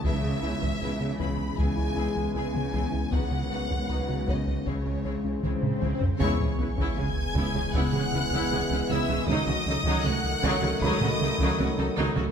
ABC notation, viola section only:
X:1
M:4/4
L:1/16
Q:1/4=78
K:C#m
V:1 name="Viola section"
[B,E]2 [B,E]2 [B,E]2 [B,E]2 [B,E]2 [B,E]2 [B,E]2 [B,E]2 | [B,D]2 [B,D]2 [B,D]2 [B,D]2 [G,E]2 [G,E]2 [G,E]2 [G,E]2 | [B,E] [CG] [EB] [B,E] [CG] z [B,E] [CG] [B,E] [CG] [EB] [B,E] [CG] [EB] [B,E] [CG] | [F,D] [A,F] [DA] [F,D] [A,F] z [F,D] [A,F] [F,D] [A,F] [DA] [F,D] [A,F] [DA] [F,D] [A,F] |]